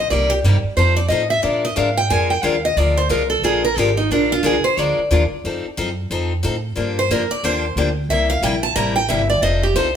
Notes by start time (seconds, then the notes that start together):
0.10 C2 C3 G3 A#3 D#4 G4 D5
0.30 G4
0.44 G2 C3 G3 A#3 D#4 G4
0.64 muted upright bass stroke
0.77 F2 F3 C4 D#4 A4 C5
0.96 D5
1.08 A2 F3 C4 D#4 A4 D#5
1.30 E5
1.42 A#2 F3 G#3 D4 F4 A#4 D5
1.65 D#5
1.76 G#2 F3 G#3 D4 F4 A#4 F5
1.97 G5
2.10 F2 F3 G#3 D4 F4 A#4 G#5
2.30 G5
2.43 D#2 F3 G#3 D4 F4 A#4 F5
2.65 D#5
2.76 D2 F3 G#3 D4 F4 A#4 D5
2.97 C5
3.09 C2 F3 G#3 D4 F4 A#4
3.30 A4
3.42 A#1 F3 G#3 D4 F4 G#4 A#4
3.65 A#4
3.76 G#1 F3 G#3 D4 F4 G4 A#4
3.97 D#4
4.10 A#1 F3 G#3 D4 F4 A#4
4.32 F4
4.43 C2 F3 G#3 D4 F4 G#4 A#4
4.64 C5, muted upright bass stroke
4.77 D2 F3 G#3 D4 F4 A#4 D5
4.98 muted upright bass stroke
5.11 D#2 F3 G#3 D4 F4 A#4
5.32 muted upright bass stroke
5.44 F2 F3 C4 D#4 A4
5.65 muted upright bass stroke
5.77 F#2 F3 C4 D#4 A4
6.10 F2 F3 C4 D#4 A4
6.43 A2 F3 C4 D#4 A4
6.76 G2 D3 F3 A#3 D4 G4
6.99 C5
7.10 F2 D3 F3 A#3 D4 G4 A#4
7.30 D5, muted upright bass stroke
7.43 D#2 D3 F3 A#3 D4 G4 C5
7.76 D2 D3 F3 A#3 D4 G4
8.09 C2 C3 G3 A#3 E4 G4 E5
8.30 F5
8.42 A#1 C3 G3 A#3 E4 G4 G5
8.63 A5
8.76 A1 C3 G3 A#3 E4 G4 A#5
8.96 G5
9.09 G1 C3 G3 A#3 E4 G4 E5
9.30 D5
9.41 F1 F3 C4 D#4 A4 D#5
9.63 G4
9.74 C2 F3 C4 D#4 A4 C5